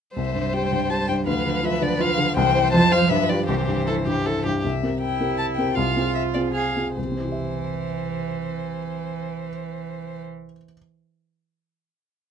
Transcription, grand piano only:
0.17 1.25 C2 soft
0.35 0.65 G2 soft
0.54 0.83 G4 soft
0.72 1.02 G2 soft
0.90 1.20 G4 soft
1.09 1.28 G2 soft
1.27 2.33 D2 soft
1.45 1.75 D3 soft
1.63 1.93 F4 soft
1.81 2.11 D3 soft
2.00 2.29 F4 soft
2.18 2.37 D3 soft
2.37 2.73 C2 medium
2.55 2.72 E4 soft
2.55 2.72 C5 soft
2.74 3.10 F2 medium
2.92 3.09 F4 soft
2.92 3.09 C5 soft
3.10 3.47 G2 medium
3.29 3.47 F4 soft
3.29 3.47 G4 soft
3.48 4.60 C2 soft
3.68 3.99 G2 soft
3.88 4.18 E4 soft
4.07 4.37 G2 soft
4.26 4.57 E4 soft
4.46 4.64 G2 soft
4.65 4.83 C2 soft
4.83 5.17 C4 soft
4.83 5.17 G4 soft
4.83 5.17 A#4 soft
5.20 5.54 C4 soft
5.20 5.54 G4 soft
5.20 5.54 A#4 soft
5.58 5.75 C4 soft
5.58 5.75 G4 soft
5.58 5.75 A#4 soft
5.77 5.95 C2 soft
5.97 6.32 C4 soft
5.97 6.32 F4 soft
5.97 6.32 G#4 soft
6.35 6.72 C4 soft
6.35 6.73 F4 soft
6.35 6.73 G#4 soft
6.76 6.95 C4 soft
6.76 6.96 F4 soft
6.76 6.96 G#4 soft
6.97 10.43 C2 soft
7.04 10.50 C3 soft
7.11 10.58 C4 soft
7.18 10.64 E4 soft
7.25 10.72 G4 soft
7.32 10.78 E5 soft

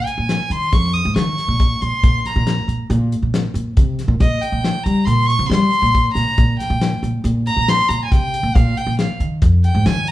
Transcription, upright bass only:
0.18 0.36 A#2 medium
0.50 0.68 D#3 medium
0.72 0.99 F2 loud
1.05 1.14 G#2 medium
1.16 1.34 D#3 medium
1.48 1.75 A#2 medium
1.82 1.91 A#2 medium
2.03 2.21 A#2 medium
2.36 2.63 A#2 medium
2.68 2.86 A#2 medium
2.90 3.17 A#2 loud
3.22 3.49 A#2 medium
3.54 3.72 A#2 medium
3.77 4.04 C3 medium
4.08 4.18 A#2 medium
4.20 4.38 A#2 medium
4.52 4.71 A#2 medium
4.86 5.04 G3 medium
5.07 5.34 A#2 medium
5.39 5.48 C3 medium
5.50 5.68 G3 medium
5.82 6.10 A#2 medium
6.15 6.24 A#2 medium
6.38 6.56 A#2 medium
6.70 6.97 A#2 medium
7.03 7.21 A#2 medium
7.24 7.51 A#2 loud
7.57 7.84 A#2 medium
7.89 8.07 A#2 medium
8.12 8.38 C3 medium
8.43 8.52 A#2 medium
8.56 8.73 A#2 medium
8.87 9.05 A#2 medium
9.20 9.38 D#3 medium
9.42 9.69 F2 medium
9.75 9.83 G#2 medium
9.86 10.03 D#3 medium

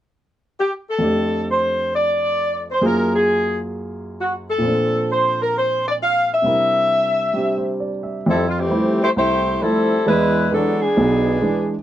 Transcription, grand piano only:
0.98 2.81 F2 soft
0.98 2.82 F3 soft
0.98 2.83 A3 soft
0.98 2.83 D4 soft
1.03 2.84 G4 soft
2.82 4.63 F#2 medium
2.82 4.64 F#3 soft
2.82 4.64 A#3 soft
2.82 4.64 F4 soft
2.82 4.64 G#4 medium
4.58 6.42 A#2 soft
4.58 6.43 F3 soft
4.64 6.45 C4 soft
4.64 6.43 D4 soft
4.69 6.48 A4 medium
6.42 8.24 C3 soft
6.42 7.32 G3 soft
6.42 7.34 D4 soft
6.42 8.26 E4 soft
6.47 8.27 A#4 soft
7.33 8.25 G3 soft
7.33 8.26 C4 soft
7.33 8.26 D4 soft
7.33 8.26 G4 soft
7.58 7.89 C5 soft
7.80 8.15 D5 soft
8.03 8.35 E5 soft
8.26 8.65 F2 medium
8.70 9.02 F3 soft
8.70 9.02 G3 soft
8.70 9.02 A3 soft
8.70 9.02 E4 medium
9.16 9.55 C2 medium
9.61 9.93 F3 soft
9.61 9.93 G3 soft
9.61 9.93 A3 soft
9.61 9.93 E4 medium
10.06 10.45 E2 medium
10.06 10.46 G#3 medium
10.51 10.83 E3 soft
10.51 10.83 G#3 soft
10.51 10.83 D4 medium
10.97 11.36 B1 medium
10.97 11.36 B2 medium
11.41 11.73 E3 soft
11.41 11.73 G#3 soft
11.41 11.73 D4 soft

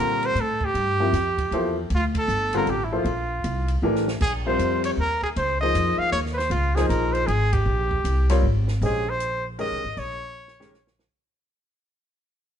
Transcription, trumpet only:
0.00 0.27 A#4 medium
0.26 0.42 C5 medium
0.41 0.66 A4 medium
0.65 1.78 G4 medium
1.95 2.05 F4 medium
2.18 2.52 A4 medium
2.57 2.71 A#4 medium
2.70 2.85 G4 medium
2.84 2.95 E4 soft
2.94 3.78 F4 medium
4.22 4.33 G#4 medium
4.47 4.82 C5 medium
4.85 4.91 C#5 medium
5.00 5.22 A#4 medium
5.23 5.29 G#4 medium
5.37 5.59 C5 medium
5.60 6.00 D#5 medium
5.98 6.11 F5 medium
6.12 6.21 C#5 medium
6.33 6.38 B4 medium
6.33 6.50 C5 medium
6.51 6.77 F4 medium
6.75 6.89 G#4 medium
6.89 7.14 A#4 medium
7.13 7.28 C5 medium
7.27 7.54 G#4 medium
7.53 8.43 G4 medium
8.85 9.11 G#4 medium
9.09 9.46 C5 medium
9.60 10.00 D#5 loud
9.99 10.99 C#5 loud

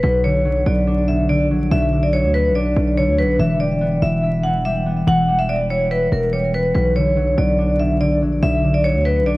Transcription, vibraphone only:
0.03 0.20 B4 medium
0.24 0.64 C#5 medium
0.67 1.06 D5 medium
1.08 1.25 E5 medium
1.29 1.46 D5 medium
1.71 2.01 E5 loud
2.03 2.11 D5 medium
2.13 2.30 C#5 medium
2.34 2.51 B4 medium
2.55 2.95 D5 medium
2.97 3.14 C#5 medium
3.18 3.35 B4 medium
3.40 3.56 E5 medium
3.60 4.00 D5 medium
4.02 4.42 E5 medium
4.43 4.61 F#5 medium
4.65 4.82 E5 loud
5.08 5.37 F#5 loud
5.39 5.47 E5 loud
5.49 5.66 D5 medium
5.70 5.87 C#5 medium
5.91 6.08 B4 medium
6.12 6.29 A#4 medium
6.33 6.50 C#5 medium
6.54 6.71 B4 medium
6.74 6.92 B4 medium
6.96 7.35 C#5 medium
7.38 7.77 D5 medium
7.80 7.97 E5 medium
8.01 8.18 D5 medium
8.43 8.72 E5 loud
8.74 8.83 D5 medium
8.84 9.01 C#5 medium
9.05 9.22 B4 medium
9.26 9.37 D5 medium

